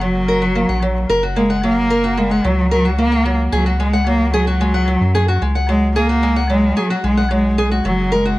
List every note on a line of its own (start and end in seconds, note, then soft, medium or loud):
0.00 0.65 F#1 medium
0.00 0.27 F#3 medium
0.00 1.06 F#3 medium
0.28 0.41 A#4 medium
0.42 0.55 F#4 medium
0.55 0.68 A#3 medium
0.69 1.06 A#1 medium
0.69 0.81 F#5 medium
0.82 1.08 F#3 medium
1.09 2.41 F#1 medium
1.09 1.22 A#4 medium
1.23 1.36 F#4 medium
1.36 1.62 G#3 medium
1.36 1.49 A#3 medium
1.50 1.62 F#5 medium
1.63 1.89 F#3 medium
1.63 2.20 A#3 loud
1.90 2.03 A#4 medium
2.04 2.17 F#4 medium
2.17 2.47 G#3 medium
2.17 2.30 A#3 medium
2.31 2.43 F#5 medium
2.44 3.49 C#2 medium
2.44 2.70 F#3 medium
2.44 2.72 F#3 medium
2.71 2.97 F#3 medium
2.71 2.84 A#4 medium
2.85 2.98 F#4 medium
2.98 3.11 A#3 medium
2.98 3.37 A#3 medium
3.12 3.24 F#5 medium
3.25 3.51 F#3 medium
3.52 4.98 C#2 medium
3.52 3.78 F#3 medium
3.52 3.65 G#4 medium
3.66 3.79 F#4 medium
3.80 3.92 G#3 medium
3.80 4.05 G#3 medium
3.93 4.05 F#5 medium
4.07 4.32 F#3 medium
4.07 4.32 A#3 medium
4.34 5.38 F#3 medium
4.34 4.46 G#4 medium
4.47 4.60 F#4 medium
4.61 4.73 G#3 medium
4.74 4.86 F#5 medium
4.88 5.13 F#3 medium
5.01 5.38 F#2 medium
5.15 5.27 G#4 medium
5.28 5.41 F#4 medium
5.42 6.73 C#2 medium
5.42 5.54 G#3 medium
5.55 5.68 F#5 medium
5.69 5.95 F#3 medium
5.69 5.94 G#3 loud
5.96 6.46 A#3 loud
5.96 6.08 G#4 loud
6.09 6.22 F#4 medium
6.23 6.35 G#3 medium
6.36 6.49 F#5 medium
6.50 6.76 F#3 medium
6.50 6.79 G#3 medium
6.77 7.04 F#3 medium
6.77 6.89 G#4 medium
6.90 7.03 F#4 medium
7.04 7.81 B1 medium
7.04 7.16 G#3 medium
7.04 7.29 G#3 medium
7.17 7.30 F#5 medium
7.31 7.57 F#3 medium
7.31 7.69 G#3 medium
7.58 7.70 G#4 medium
7.71 7.84 F#4 medium
7.85 8.39 F#1 loud
7.85 8.11 F#3 medium
7.85 8.14 F#3 medium
8.12 8.39 G#3 medium
8.12 8.24 A#4 medium
8.25 8.38 F#4 medium